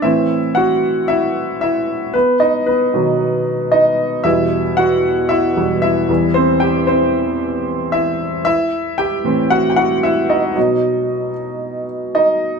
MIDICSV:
0, 0, Header, 1, 2, 480
1, 0, Start_track
1, 0, Tempo, 526316
1, 31, Time_signature, 4, 2, 24, 8
1, 11488, End_track
2, 0, Start_track
2, 0, Title_t, "Grand piano"
2, 0, Program_c, 0, 0
2, 21, Note_on_c, 0, 76, 73
2, 26, Note_on_c, 0, 45, 46
2, 32, Note_on_c, 0, 52, 40
2, 38, Note_on_c, 0, 60, 50
2, 41, Note_on_c, 0, 64, 58
2, 205, Control_c, 0, 64, 127
2, 359, Note_off_c, 0, 45, 0
2, 362, Note_off_c, 0, 52, 0
2, 365, Note_off_c, 0, 60, 0
2, 483, Note_off_c, 0, 64, 0
2, 500, Note_on_c, 0, 78, 74
2, 521, Note_off_c, 0, 76, 0
2, 522, Note_on_c, 0, 66, 57
2, 952, Note_off_c, 0, 78, 0
2, 964, Note_off_c, 0, 66, 0
2, 985, Note_on_c, 0, 76, 76
2, 1004, Note_on_c, 0, 64, 60
2, 1446, Note_off_c, 0, 64, 0
2, 1456, Note_off_c, 0, 76, 0
2, 1470, Note_on_c, 0, 76, 74
2, 1490, Note_on_c, 0, 64, 56
2, 1929, Note_off_c, 0, 64, 0
2, 1947, Note_on_c, 0, 71, 70
2, 1964, Control_c, 0, 64, 0
2, 1964, Note_on_c, 0, 59, 53
2, 1967, Note_off_c, 0, 76, 0
2, 2150, Control_c, 0, 64, 127
2, 2174, Note_off_c, 0, 71, 0
2, 2183, Note_off_c, 0, 59, 0
2, 2188, Note_on_c, 0, 75, 68
2, 2209, Note_on_c, 0, 63, 53
2, 2426, Note_off_c, 0, 63, 0
2, 2429, Note_on_c, 0, 71, 68
2, 2439, Note_off_c, 0, 75, 0
2, 2447, Note_on_c, 0, 59, 52
2, 2677, Note_on_c, 0, 47, 48
2, 2682, Note_on_c, 0, 51, 44
2, 2686, Note_on_c, 0, 54, 53
2, 3365, Note_off_c, 0, 59, 0
2, 3389, Note_on_c, 0, 75, 72
2, 3406, Note_on_c, 0, 63, 60
2, 3422, Note_off_c, 0, 71, 0
2, 3838, Note_off_c, 0, 75, 0
2, 3841, Note_off_c, 0, 47, 0
2, 3843, Note_off_c, 0, 51, 0
2, 3845, Note_off_c, 0, 54, 0
2, 3848, Note_off_c, 0, 63, 0
2, 3863, Note_on_c, 0, 76, 80
2, 3871, Note_on_c, 0, 40, 44
2, 3875, Note_on_c, 0, 47, 43
2, 3880, Note_on_c, 0, 55, 52
2, 3881, Note_on_c, 0, 64, 68
2, 3888, Control_c, 0, 64, 0
2, 4040, Control_c, 0, 64, 127
2, 4204, Note_off_c, 0, 40, 0
2, 4206, Note_off_c, 0, 47, 0
2, 4209, Note_off_c, 0, 55, 0
2, 4325, Note_off_c, 0, 64, 0
2, 4349, Note_on_c, 0, 78, 81
2, 4364, Note_off_c, 0, 76, 0
2, 4369, Note_on_c, 0, 66, 62
2, 4809, Note_off_c, 0, 66, 0
2, 4823, Note_on_c, 0, 76, 80
2, 4844, Note_on_c, 0, 64, 64
2, 4847, Note_off_c, 0, 78, 0
2, 5077, Note_on_c, 0, 40, 38
2, 5081, Note_on_c, 0, 47, 38
2, 5082, Note_on_c, 0, 55, 44
2, 5276, Note_off_c, 0, 76, 0
2, 5286, Note_off_c, 0, 64, 0
2, 5293, Note_off_c, 0, 40, 0
2, 5295, Note_off_c, 0, 47, 0
2, 5296, Note_off_c, 0, 55, 0
2, 5306, Note_on_c, 0, 76, 80
2, 5326, Note_on_c, 0, 64, 59
2, 5550, Note_on_c, 0, 40, 45
2, 5556, Note_on_c, 0, 52, 42
2, 5560, Note_on_c, 0, 55, 48
2, 5569, Control_c, 0, 64, 0
2, 5716, Control_c, 0, 64, 127
2, 5768, Note_off_c, 0, 64, 0
2, 5783, Note_on_c, 0, 72, 77
2, 5800, Note_on_c, 0, 60, 62
2, 5806, Note_off_c, 0, 76, 0
2, 6020, Note_on_c, 0, 79, 76
2, 6021, Note_off_c, 0, 60, 0
2, 6037, Note_off_c, 0, 72, 0
2, 6040, Note_on_c, 0, 67, 65
2, 6237, Note_off_c, 0, 40, 0
2, 6240, Note_off_c, 0, 52, 0
2, 6242, Note_off_c, 0, 55, 0
2, 6250, Note_off_c, 0, 79, 0
2, 6261, Note_off_c, 0, 67, 0
2, 6266, Note_on_c, 0, 72, 73
2, 6284, Note_on_c, 0, 60, 61
2, 7203, Note_off_c, 0, 60, 0
2, 7224, Note_on_c, 0, 76, 77
2, 7238, Note_on_c, 0, 64, 58
2, 7259, Note_off_c, 0, 72, 0
2, 7683, Note_off_c, 0, 64, 0
2, 7691, Note_off_c, 0, 76, 0
2, 7705, Note_on_c, 0, 76, 87
2, 7721, Note_on_c, 0, 64, 64
2, 7728, Control_c, 0, 64, 0
2, 7892, Control_c, 0, 64, 127
2, 8164, Note_off_c, 0, 64, 0
2, 8189, Note_on_c, 0, 79, 80
2, 8199, Note_on_c, 0, 67, 65
2, 8204, Note_off_c, 0, 76, 0
2, 8429, Note_on_c, 0, 45, 47
2, 8432, Note_on_c, 0, 52, 41
2, 8440, Note_on_c, 0, 60, 52
2, 8642, Note_off_c, 0, 67, 0
2, 8668, Note_on_c, 0, 78, 85
2, 8678, Note_on_c, 0, 66, 64
2, 8685, Note_off_c, 0, 79, 0
2, 8844, Note_on_c, 0, 79, 56
2, 8850, Note_off_c, 0, 66, 0
2, 8863, Note_off_c, 0, 78, 0
2, 8905, Note_off_c, 0, 79, 0
2, 8905, Note_on_c, 0, 78, 77
2, 8917, Note_on_c, 0, 66, 58
2, 9138, Note_off_c, 0, 66, 0
2, 9150, Note_on_c, 0, 76, 77
2, 9156, Note_off_c, 0, 78, 0
2, 9159, Note_on_c, 0, 64, 60
2, 9205, Note_off_c, 0, 76, 0
2, 9212, Note_off_c, 0, 64, 0
2, 9390, Note_on_c, 0, 75, 67
2, 9398, Note_on_c, 0, 63, 52
2, 9593, Note_off_c, 0, 45, 0
2, 9595, Note_off_c, 0, 52, 0
2, 9599, Note_off_c, 0, 60, 0
2, 9621, Note_off_c, 0, 63, 0
2, 9626, Note_on_c, 0, 47, 48
2, 9630, Note_on_c, 0, 54, 44
2, 9634, Note_on_c, 0, 63, 51
2, 9645, Control_c, 0, 64, 0
2, 9787, Control_c, 0, 64, 127
2, 10312, Note_off_c, 0, 47, 0
2, 10314, Note_off_c, 0, 54, 0
2, 10316, Note_off_c, 0, 63, 0
2, 10793, Note_off_c, 0, 75, 0
2, 11079, Note_on_c, 0, 75, 71
2, 11083, Note_on_c, 0, 63, 56
2, 11488, Note_off_c, 0, 63, 0
2, 11488, Note_off_c, 0, 75, 0
2, 11488, End_track
0, 0, End_of_file